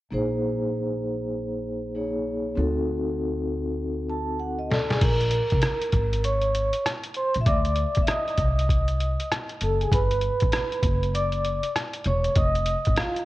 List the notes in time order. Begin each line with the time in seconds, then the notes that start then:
0.10 A#1 A#3 D#4 G#4 C5
1.95 A#3 D#4 G#4 C#5
2.56 D2 C4 D#4 F#4 A4
4.10 A5
4.40 F#5
4.59 D#5
4.71 A4 D5 A5, snare
4.89 G#4 G#5, snare
5.01 A#1 A#4 A#5, kick, closed hi-hat, crash
5.21 closed hi-hat
5.31 closed hi-hat
5.50 C2, kick, closed hi-hat
5.62 cross-stick, closed hi-hat
5.82 closed hi-hat
5.93 G#1, kick, closed hi-hat
6.13 closed hi-hat
6.24 C#5 C#6, closed hi-hat
6.42 closed hi-hat
6.55 closed hi-hat
6.73 closed hi-hat
6.86 cross-stick, closed hi-hat
7.03 closed hi-hat
7.14 C5 C6, closed hi-hat
7.34 A#1, closed hi-hat
7.41 E5
7.46 D2 D5 D6, kick, closed hi-hat
7.65 closed hi-hat
7.76 closed hi-hat
7.95 D#2, kick, closed hi-hat
8.02 E5
8.07 D#5 D#6, cross-stick, closed hi-hat
8.28 closed hi-hat
8.38 C2, kick, closed hi-hat
8.59 closed hi-hat
8.69 kick, closed hi-hat
8.88 closed hi-hat
9.00 closed hi-hat
9.20 closed hi-hat
9.32 cross-stick, closed hi-hat
9.49 closed hi-hat
9.61 F#1 A4 A5, closed hi-hat
9.81 G#4 G#5, closed hi-hat
9.91 G1 B4 B5, kick, closed hi-hat
10.11 closed hi-hat
10.21 closed hi-hat
10.40 A1, kick, closed hi-hat
10.52 cross-stick, closed hi-hat
10.72 closed hi-hat
10.83 F#1, kick, closed hi-hat
11.03 closed hi-hat
11.15 D5 D6, closed hi-hat
11.32 closed hi-hat
11.45 closed hi-hat
11.63 closed hi-hat
11.76 cross-stick, closed hi-hat
11.93 closed hi-hat
12.04 E1 C#5 C#6, closed hi-hat
12.24 closed hi-hat
12.35 F1 D#5 D#6, kick, closed hi-hat
12.55 closed hi-hat
12.66 closed hi-hat
12.85 G#1, kick, closed hi-hat
12.96 F4 F5, cross-stick, closed hi-hat
13.16 closed hi-hat